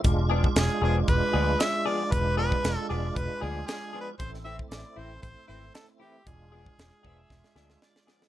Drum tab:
HH |x---x---x---x---|x---x---x---x---|x---x---x---x---|x---x-----------|
SD |----o-------o---|----o-------o---|-o--o-------o---|----o---oooooooo|
BD |o--o----o-------|o--o----o-------|o--o----o-------|o--o--o-o-------|